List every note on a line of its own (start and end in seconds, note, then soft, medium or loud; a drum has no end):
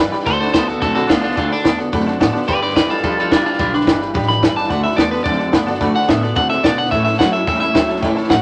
0.00 0.12 G1 medium
0.00 0.24 G2 medium
0.00 0.24 E3 medium
0.00 0.12 G3 medium
0.00 0.13 D4 medium
0.00 0.12 G4 medium
0.00 0.10 B4 medium
0.11 0.26 D4 soft
0.11 0.27 G4 medium
0.11 0.26 B4 medium
0.11 0.20 D5 loud
0.11 0.21 G5 loud
0.11 0.21 B5 loud
0.11 snare soft
0.19 snare soft
0.26 0.53 D2 medium
0.26 0.53 D3 medium
0.26 0.41 D3 medium
0.26 0.41 A3 medium
0.26 0.54 A3 medium
0.26 0.41 D4 medium
0.26 0.41 F#4 medium
0.26 0.39 A4 medium
0.26 0.40 A4 medium
0.26 0.40 C5 loud
0.26 0.35 D5 medium
0.26 0.35 F#5 medium
0.26 0.36 A5 loud
0.26 kick loud
0.26 snare soft
0.40 0.53 D4 soft
0.40 0.54 F#4 medium
0.40 0.52 A4 medium
0.40 0.55 A4 soft
0.40 0.52 C5 medium
0.40 0.49 D5 medium
0.40 0.49 F#5 medium
0.40 0.50 B5 medium
0.40 snare soft
0.47 snare soft
0.53 0.81 C#2 medium
0.53 0.79 D3 loud
0.53 0.68 A3 medium
0.53 0.80 B3 loud
0.53 0.68 D4 medium
0.53 0.68 F#4 medium
0.53 0.67 A4 medium
0.53 0.66 A4 medium
0.53 0.68 C5 medium
0.53 0.63 D5 medium
0.53 0.63 F#5 medium
0.53 0.63 B5 medium
0.53 kick loud
0.53 snare loud
0.53 hi-hat pedal loud
0.67 0.82 D4 soft
0.67 0.79 F#4 medium
0.67 0.82 F#4 soft
0.67 0.82 A4 medium
0.67 0.81 A4 medium
0.67 0.76 D5 medium
0.67 0.76 F#5 medium
0.67 0.77 A5 medium
0.67 snare soft
0.80 1.09 B1 medium
0.80 0.96 D3 medium
0.80 1.08 D3 medium
0.80 0.96 A3 medium
0.80 1.10 C4 medium
0.80 0.96 D4 medium
0.80 0.94 F#4 medium
0.80 0.95 F#4 medium
0.80 0.94 A4 loud
0.80 0.94 A4 medium
0.80 0.90 D5 medium
0.80 0.90 F#5 medium
0.80 0.91 A5 medium
0.80 kick loud
0.80 snare soft
0.95 1.10 D4 medium
0.95 1.08 F#4 medium
0.95 1.10 F#4 medium
0.95 1.10 A4 medium
0.95 1.09 A4 medium
0.95 1.04 D5 medium
0.95 1.04 F#5 medium
0.95 1.04 B5 medium
0.95 snare soft
1.07 1.37 C#2 medium
1.07 1.35 D3 medium
1.07 1.24 A3 medium
1.07 1.35 B3 loud
1.07 1.22 D4 medium
1.07 1.24 D4 medium
1.07 1.23 F4 loud
1.07 1.17 D5 loud
1.07 1.17 F#5 loud
1.07 1.17 A5 loud
1.07 kick medium
1.07 snare loud
1.07 hi-hat pedal medium
1.12 1.23 F#4 medium
1.12 1.21 A4 medium
1.21 1.37 D4 medium
1.21 1.37 F4 medium
1.21 1.38 F#4 medium
1.21 1.37 A4 medium
1.21 1.31 D5 medium
1.21 1.31 F#5 medium
1.21 1.31 A5 loud
1.21 snare soft
1.26 1.37 D4 soft
1.31 snare soft
1.35 1.64 D2 medium
1.35 1.51 D3 medium
1.35 1.64 D3 medium
1.35 1.52 A3 medium
1.35 1.65 A3 medium
1.35 1.51 D4 medium
1.35 1.52 D4 medium
1.35 1.52 F4 loud
1.35 1.50 F#4 medium
1.35 1.45 D5 medium
1.35 1.45 F#5 medium
1.35 1.45 A5 loud
1.35 kick loud
1.35 snare soft
1.39 1.49 A4 medium
1.50 1.79 D4 loud
1.50 1.65 D4 soft
1.50 1.66 F#4 soft
1.50 1.65 A4 medium
1.50 1.59 D5 medium
1.50 1.59 F#5 medium
1.50 1.59 B5 medium
1.50 snare soft
1.59 snare soft
1.64 1.92 E2 medium
1.64 1.90 D3 medium
1.64 1.79 A3 medium
1.64 1.90 B3 medium
1.64 1.80 D4 medium
1.64 1.78 F#4 medium
1.64 1.73 D5 medium
1.64 1.73 F#5 medium
1.64 1.73 B5 medium
1.64 kick loud
1.64 snare loud
1.64 hi-hat pedal medium
1.68 1.76 A4 medium
1.77 1.93 D4 soft
1.77 1.93 F#4 soft
1.77 1.92 A4 medium
1.77 1.87 D5 medium
1.77 1.87 F#5 medium
1.77 1.87 A5 medium
1.77 snare soft
1.92 2.20 F#2 medium
1.92 2.07 D3 medium
1.92 2.19 D3 medium
1.92 2.07 A3 medium
1.92 2.20 C4 medium
1.92 2.07 D4 loud
1.92 2.07 F#4 medium
1.92 2.05 A4 loud
1.92 2.01 D5 medium
1.92 2.01 F#5 medium
1.92 2.01 B5 loud
1.92 kick loud
1.92 snare soft
2.00 snare soft
2.06 2.20 D4 medium
2.06 2.21 F#4 medium
2.06 2.20 A4 medium
2.06 2.15 D5 medium
2.06 2.15 F#5 medium
2.06 2.15 A5 loud
2.06 snare soft
2.20 2.34 A2 medium
2.20 2.46 D3 loud
2.20 2.34 A3 medium
2.20 2.46 B3 loud
2.20 2.35 D4 medium
2.20 2.34 F#4 medium
2.20 2.32 A4 medium
2.20 2.29 D5 loud
2.20 2.29 F#5 loud
2.20 2.29 A5 loud
2.20 kick medium
2.20 snare loud
2.20 hi-hat pedal medium
2.32 2.47 D4 medium
2.32 2.48 F#4 medium
2.32 2.48 A4 medium
2.32 2.42 D5 loud
2.32 2.42 F#5 medium
2.32 2.42 A5 loud
2.32 snare soft
2.42 snare soft
2.48 2.75 G2 medium
2.48 2.76 D3 medium
2.48 2.62 G3 medium
2.48 2.62 D4 medium
2.48 2.61 G4 medium
2.48 2.61 B4 loud
2.48 2.59 B4 medium
2.48 2.56 D5 loud
2.48 2.61 D5 medium
2.48 2.57 G5 medium
2.48 2.57 B5 loud
2.48 kick loud
2.48 snare soft
2.60 2.75 D4 soft
2.60 2.76 G4 soft
2.60 2.75 B4 soft
2.60 2.74 B4 medium
2.60 2.70 D5 medium
2.60 2.75 D5 medium
2.60 2.71 G5 medium
2.60 2.71 B5 medium
2.60 snare soft
2.69 snare soft
2.75 3.03 E2 medium
2.75 3.01 G2 medium
2.75 3.01 E3 loud
2.75 2.89 G3 medium
2.75 2.90 D4 medium
2.75 2.89 G4 medium
2.75 2.89 B4 medium
2.75 2.87 B4 medium
2.75 2.84 D5 medium
2.75 2.90 D5 medium
2.75 2.84 G5 medium
2.75 2.85 B5 medium
2.75 kick loud
2.75 snare loud
2.75 hi-hat pedal medium
2.88 3.03 D4 medium
2.88 3.03 F4 medium
2.88 3.03 G4 medium
2.88 3.03 A4 medium
2.88 3.03 B4 medium
2.88 2.98 D5 medium
2.88 2.98 G5 medium
2.88 2.98 B5 medium
2.88 snare soft
2.97 snare soft
3.03 3.31 D2 medium
3.03 3.30 G2 medium
3.03 3.31 F3 loud
3.03 3.18 G3 medium
3.03 3.18 D4 medium
3.03 3.17 F4 medium
3.03 3.18 G4 medium
3.03 3.18 A4 loud
3.03 3.17 B4 medium
3.03 3.12 D5 medium
3.03 3.12 G5 medium
3.03 3.12 B5 medium
3.03 kick loud
3.03 snare soft
3.17 3.32 F4 medium
3.17 3.32 G4 medium
3.17 3.33 A4 medium
3.17 3.32 B4 medium
3.17 3.26 D5 medium
3.17 3.26 G5 medium
3.17 3.26 B5 medium
3.17 snare soft
3.21 3.31 D4 soft
3.31 3.59 C#2 medium
3.31 3.57 G2 medium
3.31 3.57 E3 medium
3.31 3.45 G3 medium
3.31 3.44 D4 medium
3.31 3.46 D4 medium
3.31 3.45 F4 loud
3.31 3.45 G4 medium
3.31 3.43 B4 medium
3.31 3.40 D5 loud
3.31 3.40 G5 loud
3.31 3.40 B5 loud
3.31 kick loud
3.31 snare loud
3.31 hi-hat pedal medium
3.44 3.59 D4 medium
3.44 3.58 D4 soft
3.44 3.59 F4 medium
3.44 3.59 G4 soft
3.44 3.59 B4 medium
3.44 3.54 D5 medium
3.44 3.54 G5 medium
3.44 3.54 A5 loud
3.44 snare soft
3.53 snare soft
3.58 3.87 B1 medium
3.58 3.86 G2 medium
3.58 3.87 D3 medium
3.58 3.73 G3 medium
3.58 3.73 D4 medium
3.58 3.73 F4 loud
3.58 3.72 G4 medium
3.58 3.71 B4 medium
3.58 3.67 D5 medium
3.58 3.68 G5 medium
3.58 3.68 B5 loud
3.58 kick loud
3.58 snare soft
3.72 4.01 D4 loud
3.72 3.86 D4 soft
3.72 3.87 G4 medium
3.72 3.87 B4 medium
3.72 3.82 D5 medium
3.72 3.82 G5 medium
3.72 3.82 C#6 medium
3.72 snare soft
3.81 snare soft
3.86 4.14 G1 medium
3.86 4.12 G2 medium
3.86 4.12 E3 loud
3.86 4.00 G3 medium
3.86 4.01 D4 medium
3.86 4.01 G4 medium
3.86 3.99 B4 medium
3.86 3.96 D5 medium
3.86 3.96 G5 medium
3.86 3.96 B5 medium
3.86 kick loud
3.86 snare loud
3.86 hi-hat pedal loud
4.00 4.14 D4 soft
4.00 4.15 G4 soft
4.00 4.15 B4 medium
4.00 4.09 D5 medium
4.00 4.09 G5 medium
4.00 4.09 B5 medium
4.00 snare soft
4.14 4.42 A1 medium
4.14 4.41 G2 medium
4.14 4.42 F3 medium
4.14 4.28 G3 medium
4.14 4.29 D4 loud
4.14 4.29 G4 medium
4.14 4.28 B4 loud
4.14 4.23 D5 loud
4.14 4.24 G5 medium
4.14 4.24 B5 loud
4.14 kick loud
4.14 snare soft
4.22 snare soft
4.29 4.43 D4 medium
4.29 4.43 G4 medium
4.29 4.43 B4 medium
4.29 4.37 D5 medium
4.29 4.38 G5 medium
4.29 4.56 B5 loud
4.29 4.38 B5 medium
4.29 snare soft
4.42 4.70 G1 loud
4.42 4.67 G2 medium
4.42 4.68 E3 loud
4.42 4.57 G3 medium
4.42 4.57 D4 medium
4.42 4.58 G4 medium
4.42 4.51 D5 loud
4.42 4.51 G5 loud
4.42 4.52 B5 loud
4.42 kick medium
4.42 snare loud
4.42 hi-hat pedal loud
4.46 4.56 B4 medium
4.56 4.72 G4 medium
4.56 4.71 B4 soft
4.56 4.65 D5 medium
4.56 4.65 G5 medium
4.56 4.70 A5 medium
4.56 4.65 D6 loud
4.56 snare soft
4.60 4.71 D4 soft
4.60 snare soft
4.69 4.97 D2 medium
4.69 4.96 D3 medium
4.69 4.85 D3 medium
4.69 4.97 A3 loud
4.69 4.85 A3 medium
4.69 4.85 D4 medium
4.69 4.78 D5 loud
4.69 4.83 F#5 loud
4.69 4.79 F#5 medium
4.69 4.79 A5 loud
4.69 kick loud
4.69 snare soft
4.73 4.85 F#4 medium
4.73 4.83 A4 medium
4.84 4.99 F#4 medium
4.84 4.98 A4 medium
4.84 4.92 D5 medium
4.84 4.97 E5 loud
4.84 4.92 F#5 medium
4.84 4.93 B5 loud
4.84 snare soft
4.88 4.98 D4 soft
4.88 snare soft
4.96 5.25 E2 medium
4.96 5.23 D3 medium
4.96 5.12 A3 medium
4.96 5.23 B3 loud
4.96 5.13 D4 medium
4.96 5.12 F#4 medium
4.96 5.11 D5 medium
4.96 5.06 D5 medium
4.96 5.07 F#5 medium
4.96 5.07 A5 medium
4.96 kick loud
4.96 snare loud
4.96 hi-hat pedal medium
5.01 5.11 A4 medium
5.11 5.25 D4 soft
5.11 5.26 F#4 medium
5.11 5.26 A4 medium
5.11 5.24 B4 medium
5.11 5.20 D5 medium
5.11 5.21 F#5 medium
5.11 5.21 A5 medium
5.11 snare soft
5.19 snare soft
5.24 5.53 F#2 medium
5.24 5.39 D3 medium
5.24 5.52 D3 medium
5.24 5.40 A3 medium
5.24 5.53 C4 loud
5.24 5.40 D4 medium
5.24 5.40 F#4 medium
5.24 5.38 A4 medium
5.24 5.79 D5 loud
5.24 5.34 D5 medium
5.24 5.34 F#5 medium
5.24 5.34 A5 medium
5.24 kick loud
5.24 snare soft
5.32 snare soft
5.39 5.54 D4 medium
5.39 5.54 F#4 medium
5.39 5.53 A4 medium
5.39 5.47 D5 medium
5.39 5.47 F#5 medium
5.39 5.48 A5 medium
5.39 snare soft
5.52 5.80 G2 medium
5.52 5.78 D3 medium
5.52 5.67 A3 medium
5.52 5.78 B3 loud
5.52 5.68 D4 medium
5.52 5.68 F#4 medium
5.52 5.61 D5 loud
5.52 5.61 F#5 loud
5.52 5.62 B5 loud
5.52 kick medium
5.52 snare loud
5.52 hi-hat pedal medium
5.56 5.67 A4 medium
5.66 5.82 F#4 medium
5.66 5.81 A4 medium
5.66 5.75 D5 loud
5.66 5.75 F#5 loud
5.66 5.75 A5 loud
5.66 snare soft
5.71 5.81 D4 medium
5.71 snare soft
5.81 5.94 F#2 medium
5.81 6.07 D3 medium
5.81 5.95 D3 medium
5.81 6.08 A3 loud
5.81 5.95 A3 loud
5.81 5.96 D4 loud
5.81 5.95 F#4 loud
5.81 5.94 A4 medium
5.81 5.89 D5 loud
5.81 5.89 F#5 medium
5.81 5.89 B5 loud
5.81 kick loud
5.81 snare soft
5.94 6.09 A4 medium
5.94 6.03 D5 medium
5.94 6.03 F#5 medium
5.94 6.09 F#5 loud
5.94 6.03 A5 medium
5.94 muted upright bass stroke soft
5.94 snare soft
5.98 6.08 D4 medium
5.98 snare soft
6.07 6.36 A2 medium
6.07 6.33 D3 medium
6.07 6.22 A3 medium
6.07 6.34 B3 loud
6.07 6.23 D4 medium
6.07 6.22 F#4 medium
6.07 6.21 A4 medium
6.07 6.17 D5 medium
6.07 6.23 E5 medium
6.07 6.17 F#5 medium
6.07 6.17 A5 medium
6.07 kick medium
6.07 snare loud
6.07 hi-hat pedal medium
6.22 6.35 D4 soft
6.22 6.36 F#4 soft
6.22 6.36 A4 medium
6.22 6.31 D5 medium
6.22 6.36 D5 medium
6.22 6.31 F#5 medium
6.22 6.31 A5 medium
6.22 snare soft
6.35 6.63 C#3 medium
6.35 6.50 D3 medium
6.35 6.62 D3 medium
6.35 6.50 A3 medium
6.35 6.64 C4 loud
6.35 6.50 D4 medium
6.35 6.49 F#4 medium
6.35 6.48 A4 medium
6.35 6.44 D5 medium
6.35 6.44 F#5 medium
6.35 6.49 F#5 loud
6.35 6.44 A5 medium
6.35 kick loud
6.35 snare soft
6.49 6.63 D4 soft
6.49 6.64 F#4 medium
6.49 6.64 A4 medium
6.49 6.58 D5 medium
6.49 6.63 E5 loud
6.49 6.58 F#5 medium
6.49 6.59 A5 medium
6.49 snare soft
6.63 6.91 B2 loud
6.63 6.89 D3 medium
6.63 6.77 A3 medium
6.63 6.89 B3 medium
6.63 6.78 D4 medium
6.63 6.78 F#4 medium
6.63 6.76 A4 medium
6.63 6.72 D5 loud
6.63 6.78 D5 loud
6.63 6.72 F#5 loud
6.63 6.72 A5 loud
6.63 kick medium
6.63 snare loud
6.63 hi-hat pedal loud
6.77 6.93 D4 soft
6.77 6.92 F#4 medium
6.77 6.91 A4 medium
6.77 6.86 D5 loud
6.77 6.86 F#5 medium
6.77 6.91 F#5 loud
6.77 6.86 A5 medium
6.77 snare soft
6.85 snare soft
6.91 7.18 A2 medium
6.91 7.19 A2 medium
6.91 7.06 A2 medium
6.91 7.20 E3 medium
6.91 7.06 E3 medium
6.91 7.07 A3 medium
6.91 7.07 C#4 medium
6.91 7.06 E4 medium
6.91 7.05 A4 medium
6.91 7.00 C#5 medium
6.91 7.03 E5 loud
6.91 7.00 E5 medium
6.91 7.00 A5 loud
6.91 kick loud
6.91 snare soft
7.04 7.19 C#4 soft
7.04 7.20 E4 soft
7.04 7.20 A4 medium
7.04 7.13 C#5 medium
7.04 7.19 E5 medium
7.04 7.14 E5 medium
7.04 7.14 A5 medium
7.04 snare soft
7.10 7.18 A3 soft
7.10 snare soft
7.19 7.46 F#2 medium
7.19 7.44 A2 loud
7.19 7.45 F#3 medium
7.19 7.33 A3 medium
7.19 7.34 C#4 medium
7.19 7.33 E4 medium
7.19 7.32 A4 medium
7.19 7.28 C#5 medium
7.19 7.28 E5 medium
7.19 7.33 F#5 medium
7.19 7.28 A5 medium
7.19 kick medium
7.19 snare loud
7.19 hi-hat pedal medium
7.32 7.47 C#4 medium
7.32 7.48 E4 medium
7.32 7.47 A4 medium
7.32 7.41 C#5 medium
7.32 7.41 E5 medium
7.32 7.47 E5 loud
7.32 7.41 A5 medium
7.32 snare soft
7.36 7.47 A3 soft
7.47 7.74 E2 medium
7.47 7.73 A2 medium
7.47 7.61 A2 medium
7.47 7.61 E3 medium
7.47 7.75 G3 medium
7.47 7.62 A3 medium
7.47 7.62 C#4 medium
7.47 7.61 E4 medium
7.47 7.61 A4 medium
7.47 7.56 C#5 medium
7.47 7.56 E5 medium
7.47 7.59 E5 loud
7.47 7.56 G5 medium
7.47 kick loud
7.47 snare soft
7.55 snare soft
7.60 7.75 C#4 medium
7.60 7.76 E4 medium
7.60 7.75 A4 medium
7.60 7.69 C#5 medium
7.60 8.14 E5 loud
7.60 7.69 E5 medium
7.60 7.69 B5 medium
7.60 snare soft
7.65 7.73 A3 soft
7.74 8.02 D2 loud
7.74 8.00 A2 medium
7.74 8.00 F#3 loud
7.74 7.89 A3 medium
7.74 7.89 C#4 medium
7.74 7.90 E4 medium
7.74 7.88 A4 medium
7.74 7.83 C#5 loud
7.74 7.83 E5 loud
7.74 7.83 G5 loud
7.74 kick loud
7.74 snare loud
7.74 hi-hat pedal medium
7.88 8.03 C#4 soft
7.88 8.03 E4 medium
7.88 8.03 A4 medium
7.88 7.97 C#5 medium
7.88 7.97 E5 medium
7.88 7.97 A5 loud
7.88 snare soft
7.93 8.03 A3 soft
7.93 snare soft
8.01 8.29 C#2 loud
8.01 8.28 A2 medium
8.01 8.16 A2 medium
8.01 8.29 E3 medium
8.01 8.17 E3 medium
8.01 8.17 A3 medium
8.01 8.17 C#4 loud
8.01 8.16 E4 loud
8.01 8.10 C#5 loud
8.01 8.11 E5 loud
8.01 8.11 G5 loud
8.01 kick loud
8.01 snare soft
8.05 8.15 A4 loud
8.15 8.28 A3 medium
8.15 8.29 C#4 medium
8.15 8.30 E4 medium
8.15 8.30 A4 medium
8.15 8.24 C#5 medium
8.15 8.24 E5 medium
8.15 8.25 A5 loud
8.15 snare soft
8.24 snare soft
8.29 8.42 A1 loud
8.29 8.42 A2 medium
8.29 8.42 F#3 loud
8.29 8.42 A3 medium
8.29 8.42 C#4 medium
8.29 8.42 E4 medium
8.29 8.42 A4 medium
8.29 8.38 C#5 medium
8.29 8.39 E5 medium
8.29 8.42 F#5 loud
8.29 8.39 F#5 medium
8.29 kick medium
8.29 snare loud
8.29 hi-hat pedal loud